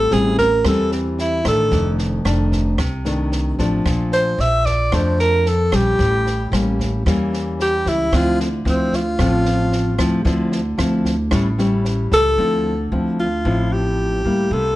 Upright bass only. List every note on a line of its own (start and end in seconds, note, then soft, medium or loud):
0.11 0.61 A1 loud
0.65 1.41 E2 medium
1.45 1.70 A1 medium
1.71 2.21 F1 medium
2.25 2.75 F1 loud
2.79 3.55 C2 medium
3.59 3.84 A1 medium
3.85 4.35 A#1 medium
4.38 4.88 A#1 loud
4.92 5.68 F2 medium
5.72 5.97 A#1 medium
5.99 6.49 A1 medium
6.52 7.02 A1 loud
7.06 7.82 E2 medium
7.86 8.11 C#2 medium
8.12 8.62 D2 medium
8.65 9.15 D2 loud
9.19 9.95 A1 loud
9.98 10.23 D2 medium
10.25 10.75 D2 loud
10.78 11.28 D2 loud
11.31 12.08 A1 loud
12.12 12.37 C#2 medium
12.38 12.88 D2 medium
12.92 13.42 D2 medium
13.45 14.21 A1 medium
14.25 14.50 D2 medium
14.51 14.76 C2 medium